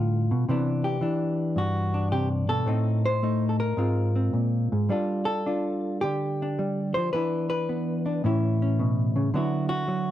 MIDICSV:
0, 0, Header, 1, 2, 480
1, 0, Start_track
1, 0, Tempo, 546946
1, 411, Time_signature, 4, 2, 24, 8
1, 2333, Tempo, 560224
1, 5693, Tempo, 549451
1, 8778, End_track
2, 0, Start_track
2, 0, Title_t, "Hollow-body jazz guitar"
2, 0, Program_c, 0, 26
2, 0, Note_on_c, 0, 45, 60
2, 0, Note_on_c, 0, 50, 54
2, 0, Note_on_c, 0, 55, 60
2, 0, Note_on_c, 0, 57, 45
2, 0, Note_on_c, 0, 65, 45
2, 0, Note_on_c, 0, 69, 89
2, 258, Note_off_c, 0, 50, 0
2, 259, Note_off_c, 0, 45, 0
2, 273, Note_on_c, 0, 47, 59
2, 404, Note_off_c, 0, 65, 0
2, 417, Note_off_c, 0, 57, 0
2, 420, Note_off_c, 0, 47, 0
2, 426, Note_on_c, 0, 48, 66
2, 432, Note_off_c, 0, 55, 0
2, 433, Note_off_c, 0, 69, 0
2, 435, Note_on_c, 0, 52, 51
2, 441, Note_on_c, 0, 59, 48
2, 446, Note_on_c, 0, 62, 45
2, 739, Note_on_c, 0, 67, 75
2, 877, Note_off_c, 0, 52, 0
2, 887, Note_on_c, 0, 52, 63
2, 889, Note_off_c, 0, 62, 0
2, 898, Note_off_c, 0, 48, 0
2, 899, Note_on_c, 0, 62, 53
2, 1368, Note_on_c, 0, 43, 58
2, 1372, Note_off_c, 0, 67, 0
2, 1387, Note_on_c, 0, 66, 89
2, 1692, Note_off_c, 0, 62, 0
2, 1703, Note_on_c, 0, 62, 49
2, 1857, Note_off_c, 0, 66, 0
2, 1860, Note_on_c, 0, 67, 90
2, 1861, Note_on_c, 0, 48, 59
2, 2000, Note_off_c, 0, 67, 0
2, 2179, Note_off_c, 0, 48, 0
2, 2183, Note_on_c, 0, 47, 64
2, 2186, Note_on_c, 0, 69, 99
2, 2312, Note_off_c, 0, 43, 0
2, 2318, Note_off_c, 0, 62, 0
2, 2327, Note_off_c, 0, 59, 0
2, 2330, Note_off_c, 0, 52, 0
2, 2333, Note_on_c, 0, 45, 70
2, 2337, Note_off_c, 0, 47, 0
2, 2344, Note_on_c, 0, 57, 45
2, 2347, Note_on_c, 0, 60, 46
2, 2357, Note_on_c, 0, 63, 46
2, 2656, Note_off_c, 0, 69, 0
2, 2673, Note_on_c, 0, 72, 101
2, 2809, Note_off_c, 0, 57, 0
2, 2818, Note_off_c, 0, 63, 0
2, 2819, Note_on_c, 0, 57, 60
2, 2828, Note_on_c, 0, 63, 46
2, 3043, Note_off_c, 0, 72, 0
2, 3046, Note_on_c, 0, 69, 54
2, 3126, Note_off_c, 0, 69, 0
2, 3138, Note_on_c, 0, 70, 84
2, 3265, Note_off_c, 0, 45, 0
2, 3270, Note_off_c, 0, 60, 0
2, 3271, Note_off_c, 0, 57, 0
2, 3275, Note_off_c, 0, 63, 0
2, 3285, Note_on_c, 0, 44, 68
2, 3295, Note_on_c, 0, 56, 46
2, 3299, Note_on_c, 0, 60, 41
2, 3301, Note_on_c, 0, 65, 41
2, 3606, Note_off_c, 0, 60, 0
2, 3616, Note_on_c, 0, 60, 38
2, 3764, Note_off_c, 0, 44, 0
2, 3768, Note_on_c, 0, 46, 53
2, 4097, Note_off_c, 0, 46, 0
2, 4101, Note_on_c, 0, 44, 55
2, 4241, Note_off_c, 0, 60, 0
2, 4244, Note_off_c, 0, 56, 0
2, 4247, Note_off_c, 0, 65, 0
2, 4249, Note_on_c, 0, 55, 64
2, 4257, Note_off_c, 0, 44, 0
2, 4257, Note_on_c, 0, 62, 40
2, 4263, Note_off_c, 0, 70, 0
2, 4267, Note_on_c, 0, 65, 45
2, 4271, Note_on_c, 0, 69, 42
2, 4546, Note_off_c, 0, 69, 0
2, 4556, Note_on_c, 0, 69, 89
2, 4727, Note_off_c, 0, 62, 0
2, 4730, Note_off_c, 0, 65, 0
2, 4737, Note_on_c, 0, 62, 61
2, 4742, Note_on_c, 0, 65, 45
2, 5203, Note_off_c, 0, 65, 0
2, 5207, Note_on_c, 0, 67, 103
2, 5223, Note_on_c, 0, 50, 55
2, 5524, Note_off_c, 0, 69, 0
2, 5537, Note_off_c, 0, 62, 0
2, 5558, Note_on_c, 0, 62, 42
2, 5688, Note_off_c, 0, 55, 0
2, 5700, Note_on_c, 0, 55, 59
2, 6010, Note_on_c, 0, 72, 101
2, 6020, Note_off_c, 0, 55, 0
2, 6029, Note_on_c, 0, 53, 61
2, 6160, Note_off_c, 0, 50, 0
2, 6166, Note_off_c, 0, 62, 0
2, 6168, Note_off_c, 0, 72, 0
2, 6170, Note_off_c, 0, 67, 0
2, 6172, Note_on_c, 0, 71, 95
2, 6179, Note_off_c, 0, 53, 0
2, 6182, Note_on_c, 0, 52, 66
2, 6188, Note_on_c, 0, 59, 44
2, 6191, Note_on_c, 0, 62, 47
2, 6483, Note_off_c, 0, 71, 0
2, 6494, Note_on_c, 0, 71, 85
2, 6653, Note_off_c, 0, 59, 0
2, 6663, Note_on_c, 0, 59, 66
2, 6973, Note_off_c, 0, 62, 0
2, 6983, Note_on_c, 0, 62, 48
2, 7120, Note_off_c, 0, 62, 0
2, 7122, Note_off_c, 0, 59, 0
2, 7143, Note_on_c, 0, 45, 70
2, 7147, Note_off_c, 0, 52, 0
2, 7150, Note_on_c, 0, 52, 47
2, 7159, Note_on_c, 0, 61, 49
2, 7161, Note_on_c, 0, 64, 46
2, 7466, Note_off_c, 0, 61, 0
2, 7477, Note_on_c, 0, 61, 46
2, 7627, Note_on_c, 0, 47, 60
2, 7941, Note_off_c, 0, 47, 0
2, 7945, Note_on_c, 0, 49, 59
2, 8083, Note_off_c, 0, 45, 0
2, 8088, Note_off_c, 0, 61, 0
2, 8092, Note_off_c, 0, 64, 0
2, 8097, Note_off_c, 0, 71, 0
2, 8099, Note_off_c, 0, 49, 0
2, 8102, Note_on_c, 0, 50, 70
2, 8106, Note_off_c, 0, 52, 0
2, 8113, Note_on_c, 0, 54, 48
2, 8118, Note_on_c, 0, 59, 50
2, 8123, Note_on_c, 0, 64, 45
2, 8130, Note_on_c, 0, 66, 48
2, 8400, Note_off_c, 0, 66, 0
2, 8410, Note_on_c, 0, 66, 104
2, 8562, Note_off_c, 0, 54, 0
2, 8573, Note_on_c, 0, 54, 61
2, 8778, Note_off_c, 0, 50, 0
2, 8778, Note_off_c, 0, 54, 0
2, 8778, Note_off_c, 0, 59, 0
2, 8778, Note_off_c, 0, 64, 0
2, 8778, Note_off_c, 0, 66, 0
2, 8778, End_track
0, 0, End_of_file